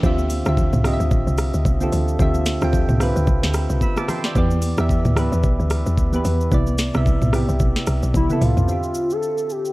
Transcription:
0.02 D2 D3 C4 F4 G4 E5, kick, low conga, shaker
0.18 high conga, shaker
0.30 open hi-hat, high conga, shaker
0.45 D2 D3 C4 F4 G4 E5, cross-stick, shaker
0.57 kick, low conga, shaker
0.73 C2, mid tom, high conga, shaker
0.84 D3 C4 F4 G4 D#5, cross-stick, open hi-hat, high conga, shaker
0.93 E5
1.00 D2, shaker
1.11 A1, kick, shaker
1.27 C2, shaker
1.38 cross-stick, open hi-hat, shaker
1.54 D2, shaker
1.65 C2, kick, high conga, shaker
1.80 D3 C4 F4 G4 A4, high conga, shaker
1.93 D2, open hi-hat, high conga, low conga, shaker
2.08 shaker
2.19 D2 D3 C4 F4 G4 E5, kick, low conga, shaker
2.34 high conga, shaker
2.46 snare, open hi-hat, high conga, shaker
2.61 D2 D3 C4 F4 G4 G5, cross-stick, shaker
2.73 kick, low conga, shaker
2.89 C2, mid tom, high conga, shaker
3.00 D3 C4 F4 G4 B4, cross-stick, open hi-hat, high conga, shaker
3.16 D2, shaker
3.27 C2, kick, shaker
3.43 D2, snare, shaker
3.54 cross-stick, open hi-hat, shaker
3.70 C2, shaker
3.81 B5 E6, kick, high conga, shaker
3.97 A5 D6, cross-stick, high conga, shaker
4.08 G5 C6, cross-stick, open hi-hat, high conga, low conga, shaker
4.24 D5 G5, snare, shaker
4.35 E2 E3 B3 G4 D5, kick, low conga, shaker
4.51 high conga, shaker
4.62 open hi-hat, high conga, shaker
4.77 E2 E3 B3 G4 E5, cross-stick, shaker
4.89 kick, low conga, shaker
5.05 D2, mid tom, high conga, shaker
5.16 E3 B3 G4 B4, cross-stick, open hi-hat, high conga, shaker
5.32 E2, shaker
5.43 B1, kick, shaker
5.59 D2, shaker
5.70 cross-stick, open hi-hat, shaker
5.86 E2, shaker
5.98 D2, kick, high conga, shaker
6.13 E3 B3 G4 B4, high conga, shaker
6.25 E2, open hi-hat, high conga, low conga, shaker
6.41 shaker
6.51 C2 C3 B3 E4 D5, kick, low conga, shaker
6.67 high conga, shaker
6.78 snare, open hi-hat, high conga, shaker
6.94 C2 C3 B3 E4 E5, cross-stick, shaker
7.05 kick, low conga, shaker
7.21 B1, mid tom, high conga, shaker
7.32 C3 B3 E4 G4, cross-stick, open hi-hat, high conga, shaker
7.49 C2, shaker
7.60 B1, kick, shaker
7.76 snare, shaker
7.87 C2, cross-stick, open hi-hat, shaker
8.03 B1, shaker
8.14 C2 E4, kick, high tom, high conga, shaker
8.29 C3 B3 E4 A4, mid tom, high conga, shaker
8.41 C2 F4, mid tom, open hi-hat, high conga, low conga, shaker
8.57 B1, floor tom, shaker
8.66 D3 C4 E5, shaker
8.71 F4 G4
8.83 shaker
8.95 shaker
9.10 A4, shaker
9.23 shaker
9.38 shaker
9.50 G4, shaker
9.65 shaker

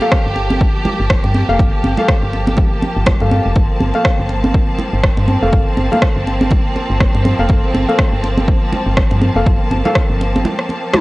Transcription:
Already playing: F3 A#3 G4 A5
0.01 A#3 A4 F5, muted conga
0.12 kick, cross-stick
0.26 G1
0.36 muted conga
0.50 high conga
0.61 kick
0.85 muted conga, low conga
1.00 G1
1.10 kick, cross-stick
1.24 G2, muted conga
1.35 high conga
1.49 F1 A#3 A4 F5
1.59 G1, kick, muted conga
1.84 G1, high conga
1.97 A#3 A4 F5, muted conga, low conga
2.08 kick, cross-stick
2.23 G1
2.33 muted conga
2.47 high conga
2.57 kick, low conga
2.82 muted conga, high conga
2.97 G1
3.06 kick, cross-stick, low conga
3.20 G2 A#3 A4 F5, muted conga
3.31 high conga
3.46 F1
3.56 G1 C4, kick, muted conga
3.81 G1, high conga
3.94 A#3 A4 F5, muted conga
4.05 kick, cross-stick
4.20 G1
4.29 muted conga
4.44 high conga
4.54 kick
4.79 muted conga, low conga
4.93 G1
5.04 kick, cross-stick
5.17 G2, muted conga
5.28 high conga
5.42 F1 A#3 A4 F5
5.53 G1, kick, muted conga
5.77 G1, high conga
5.92 A#3 A4 F5, muted conga, low conga
6.02 kick, cross-stick
6.16 G1
6.27 muted conga
6.41 high conga
6.50 kick, low conga
6.76 muted conga, high conga
6.90 G1
7.00 kick, cross-stick, low conga
7.14 G2, muted conga
7.25 high conga
7.39 F1 A#3 A4 F5
7.49 G1, kick, muted conga
7.74 G1, high conga
7.89 A#3 A4 F5, muted conga
7.99 kick, cross-stick
8.13 G1
8.24 muted conga
8.38 high conga
8.48 kick
8.73 muted conga, low conga
8.86 G1
8.97 kick, cross-stick
9.11 G2, muted conga
9.22 high conga
9.36 F1 A#3 A4 F5
9.46 G1, kick, muted conga
9.71 G1, high conga
9.85 A#3 A4 F5, muted conga, low conga
9.95 kick, cross-stick
10.09 G1
10.21 muted conga
10.36 high conga
10.45 low conga
10.59 cross-stick
10.69 muted conga, high conga
10.94 cross-stick, high tom, low conga

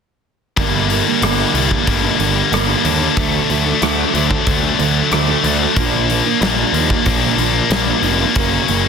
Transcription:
0.57 G1 G2 D3 G3 A#3 D4, kick, open hi-hat
0.90 D3 G3 A#3 D4, open hi-hat
1.06 G3 A#3 D4
1.22 G1 G2 D3 G3 A#3 D4, cross-stick, open hi-hat
1.54 C2 G2 D3 G3 A#3 D4, open hi-hat
1.70 G3 A#3 D4, kick
1.87 G1 G2 D3 G3 A#3 D4, kick, open hi-hat
2.03 G3 A#3 D4
2.18 G1 D3 G3 A#3 D4, open hi-hat
2.51 G1 G2 D3 G3 A#3 D4, cross-stick, open hi-hat
2.68 G3 A#3 D4
2.83 D#2 G2 D3 G3 A#3 D4, open hi-hat
3.01 G3 A#3 D4
3.17 D2 D3 F#3 A3 D4, kick, open hi-hat
3.49 D2 D3 F#3 A3 D4, open hi-hat
3.66 F#3 A3 D4
3.81 D2 D3 F#3 A3 D4, cross-stick, open hi-hat
4.14 D2 D3 F#3 A3 D4, open hi-hat
4.31 F#3 A3 D4, kick
4.46 D2 D3 F#3 A3 D4, kick, open hi-hat
4.63 F#3 A3 D4
4.79 D2 D3 F#3 A3 D4, open hi-hat
5.11 D2 D3 F#3 A3 D4, cross-stick, open hi-hat
5.28 F#3 A3 D4
5.43 D2 D3 F#3 A3 D4, open hi-hat
5.60 F#3 A3 D4
5.76 A#1 A#2 F3 A#3 D4, kick, open hi-hat
6.09 A#2 F3 A#3 D4, open hi-hat
6.25 F3 A#3 D4
6.41 A#1 A#2 F3 A#3 D4, snare, open hi-hat
6.72 D#2 A#2 F3 A#3 D4, open hi-hat
6.90 F3 A#3 D4, kick
7.05 A#1 A#2 F3 A#3 D4, kick, open hi-hat
7.23 F3 A#3 D4
7.37 A#1 A#2 F3 A#3 D4, open hi-hat
7.70 A#1 A#2 F3 A#3 D4, snare, open hi-hat
7.87 F3 A#3 D4
8.02 F1 A#2 F3 A#3 D4, open hi-hat
8.20 F3 A#3 D4
8.36 F#1 F#2 C#3 F#3 A#3 C#4, kick, open hi-hat
8.68 F#1 C#3 F#3 A#3 C#4, open hi-hat
8.85 C#4

